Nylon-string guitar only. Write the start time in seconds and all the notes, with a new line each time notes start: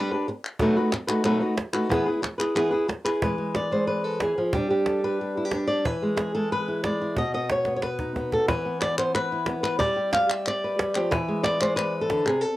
Already playing: G3 D4 G4 B4
0.11 D4 G4 B4
0.28 muted nylon-string guitar stroke
0.61 B2 F#3 A3 D#4 F#4 B4
0.77 A3 D#4 F#4 B4
0.92 muted nylon-string guitar stroke
1.07 A3 D#4 F#4 B4
1.24 B2 F#3 A3 D#4 F#4 B4
1.40 A3 D#4 F#4 B4
1.57 muted nylon-string guitar stroke
1.73 A3 D#4 F#4 B4
1.89 E3 B3 E4 G#4 B4
2.06 E4 G#4 B4
2.22 muted nylon-string guitar stroke
2.38 E4 G#4 B4
2.55 E3 B3 E4 G#4 B4
2.71 E4 G#4 B4
2.88 muted nylon-string guitar stroke
3.05 E4 G#4 B4
3.22 E3 G#3 B4
3.38 G#3
3.56 D5
3.71 G#3 C5
3.87 B4
4.04 A4
4.22 E3 G#4
4.38 F3
4.54 G3 D4 G4
4.70 D4 G4
4.86 A4
5.04 D4 B4
5.21 G4
5.37 E4
5.45 G4
5.53 D4
5.67 D5
5.85 E3 B4
6.02 G#3
6.17 G#4
6.35 G#3 A4
6.52 B4
6.68 E4
6.84 G#3 D5
7.01 E4
7.17 B2 D#5
7.34 B3 D#5
7.52 C#5
7.66 B3
7.76 C#5
7.83 B4
7.99 D#4
8.16 B3
8.33 A4
8.48 E3 B4
8.65 B3
8.82 D5
8.98 B3 C5
9.15 B4
9.32 E4
9.47 B3
9.63 B4
9.79 G3 D5
9.96 G4
10.13 F5
10.29 G4 E5
10.47 D5
10.64 B4
10.79 G3
10.95 F3 G4
11.11 E3 B4
11.28 G#3
11.43 D5
11.61 G#3 C5
11.76 B4
12.01 A4
12.10 D3
12.26 C3 G#4
12.41 A4